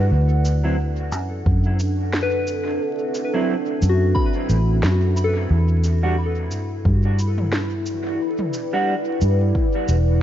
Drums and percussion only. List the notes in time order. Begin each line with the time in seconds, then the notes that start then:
0.45 shaker
1.12 shaker
1.46 kick
1.79 shaker
2.13 snare
2.47 shaker
3.15 shaker
3.82 shaker
4.16 kick
4.50 shaker
4.83 snare
5.17 shaker
5.84 shaker
6.51 shaker
6.85 kick
7.19 shaker
7.38 mid tom
7.52 snare
7.86 shaker
8.39 mid tom
8.53 shaker
9.21 shaker
9.55 kick
9.88 shaker